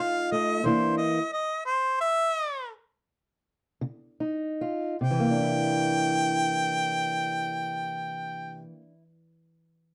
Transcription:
Already playing: F2 A3 D#4 F4
0.01 F5
0.32 A3 D#5
0.64 C3 E3 A#3 D4 E4 C5
0.97 D#5
1.33 D#5
1.66 C5
2.01 E5
3.81 C#3
4.20 D#4
4.61 F4
5.01 C3 G5
5.11 E3
5.20 A#3
5.30 D4
5.41 E4

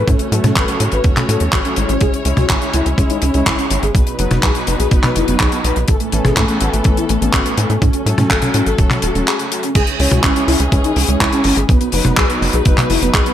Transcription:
Already playing: A3 C#4
0.07 A2 C#4 F#4 C#5, kick, closed hi-hat
0.19 C#4, closed hi-hat
0.32 A2 F#3 A3 C#4 A4, closed hi-hat
0.44 A2 C#4, closed hi-hat, high tom
0.56 A1 B4, kick, clap, closed hi-hat
0.68 F#3 A3 C#4 A4, closed hi-hat
0.80 A2 C#4, closed hi-hat
0.92 A1 B4, closed hi-hat
1.04 E2 F#3 A3 C#4 A4, kick, closed hi-hat
1.16 C#4, clap, closed hi-hat, high tom
1.28 A2 F#3 A3 C#4 A4, closed hi-hat
1.40 E2 C#4, closed hi-hat
1.53 A1 F#4, kick, clap, closed hi-hat
1.65 F#3 A3 C#4 A4, closed hi-hat
1.76 A1 G#3 C#4 E4 C#5, closed hi-hat
1.89 A1 C#4, closed hi-hat
2.01 C#2 G#3 E4 G#4, kick, closed hi-hat
2.14 C#4, closed hi-hat
2.25 C#2 G#3 C#4 E4 C#5, closed hi-hat
2.37 C#2 F#4, closed hi-hat, high tom
2.49 G#1 C#4, kick, clap, closed hi-hat
2.62 G#3 C#4 E4 C#5, closed hi-hat
2.73 C#2 E4, closed hi-hat
2.86 C#2 C#4, closed hi-hat
2.98 C#2 G#3 C#4 E4 C#5, kick, closed hi-hat
3.10 D#4, closed hi-hat
3.22 C#2 C#4, closed hi-hat
3.34 C#2 G#3 C#4 E4 C#5, closed hi-hat
3.46 C#2 E4, kick, clap, closed hi-hat
3.58 C#4, closed hi-hat
3.70 G#1 G#3 C#4 E4 C#5, closed hi-hat
3.83 G#1 G#4, closed hi-hat
3.94 B1 F#3 B3 D#4 B4, kick, closed hi-hat
4.07 B3, closed hi-hat
4.19 F#1 F#3 B3 D#4 B4, closed hi-hat
4.31 F#1 B3, closed hi-hat, high tom
4.43 B1 G#4, kick, clap, closed hi-hat
4.55 F#3 B3 D#4 B4, closed hi-hat
4.67 F#1 B3, closed hi-hat
4.79 B1 G#4, closed hi-hat
4.91 F#1 F#3 B3 D#4 B4, kick, closed hi-hat
5.03 B3, clap, closed hi-hat, high tom
5.16 F#1 E4, closed hi-hat
5.28 F#1 F#3 B3 D#4 B4, closed hi-hat
5.40 B1 G#4, kick, clap, closed hi-hat
5.52 B3, closed hi-hat
5.64 B1 F#3 B3 D#4 B4, closed hi-hat
5.76 B1 B3, closed hi-hat
5.88 A1 E3 B3 C#4 A4, kick, closed hi-hat
6.00 A3, closed hi-hat
6.12 A1 E3 A3 B3 C#4 A4, closed hi-hat
6.24 A1 G#4, closed hi-hat, high tom
6.37 A2 A3, kick, clap, closed hi-hat
6.48 E3 A3 B3 C#4 A4, closed hi-hat
6.61 A1 F#4, closed hi-hat
6.73 A1 A3, closed hi-hat
6.84 A1 E3 A3 B3 C#4 A4, kick, closed hi-hat
6.97 E4, closed hi-hat
7.09 A1 A3, closed hi-hat
7.21 A1 E3 A3 B3 C#4 A4, closed hi-hat
7.33 A1 F#4, kick, clap, closed hi-hat
7.45 A3, closed hi-hat
7.57 A2 E3 A3 B3 C#4 A4, closed hi-hat
7.69 A2 A4, closed hi-hat
7.82 A2 F#3 A3 C#4 A4, kick, closed hi-hat
7.93 C#4, closed hi-hat
8.06 A2 F#3 A3 C#4 A4, closed hi-hat
8.18 A2 C#4, closed hi-hat, high tom
8.30 A1 A4, kick, clap, closed hi-hat
8.42 F#3 A3 C#4 A4, closed hi-hat, high tom
8.54 A2 C#4, closed hi-hat
8.66 A1 A4, closed hi-hat
8.78 E1 F#3 A3 C#4 A4, kick, closed hi-hat
8.90 C#4, clap, closed hi-hat, high tom
9.02 E1 F#4, closed hi-hat
9.14 E1 F#3 A3 C#4 A4, closed hi-hat
9.27 G#4, clap, closed hi-hat
9.39 C#4, closed hi-hat
9.51 F#3 A3 C#4 A4, closed hi-hat
9.63 C#4, closed hi-hat
9.75 C#2 E3 G#3 C#4 G#4, kick, closed hi-hat, crash
9.87 C#4, closed hi-hat
9.99 C#2 G#3 C#4 E4 C#5, open hi-hat
10.11 C#2 F#4, closed hi-hat, high tom
10.23 G#1 C#4, kick, clap, closed hi-hat
10.36 G#3 C#4 E4 C#5, closed hi-hat
10.48 C#2 E4, open hi-hat
10.60 C#2 C#4, closed hi-hat
10.72 C#2 G#3 C#4 E4 C#5, kick, closed hi-hat
10.84 D#4, closed hi-hat
10.96 C#2 C#4, open hi-hat
11.08 C#2 G#3 C#4 E4 C#5, closed hi-hat
11.20 C#2 E4, kick, clap, closed hi-hat
11.32 C#4, closed hi-hat
11.44 G#1 G#3 C#4 E4 C#5, open hi-hat
11.56 G#1 G#4, closed hi-hat
11.69 B1 F#3 B3 D#4 B4, kick, closed hi-hat
11.81 B3, closed hi-hat
11.92 F#1 F#3 B3 D#4 B4, open hi-hat
12.05 F#1 B3, closed hi-hat, high tom
12.17 B1 G#4, kick, clap, closed hi-hat
12.29 F#3 B3 D#4 B4, closed hi-hat
12.41 F#1 B3, open hi-hat
12.53 B1 G#4, closed hi-hat
12.65 F#1 F#3 B3 D#4 B4, kick, closed hi-hat
12.78 B3, clap, closed hi-hat, high tom
12.90 F#1 E4, open hi-hat
13.02 F#1 F#3 B3 D#4 B4, closed hi-hat
13.14 B1 G#4, kick, clap, closed hi-hat
13.26 B3, closed hi-hat

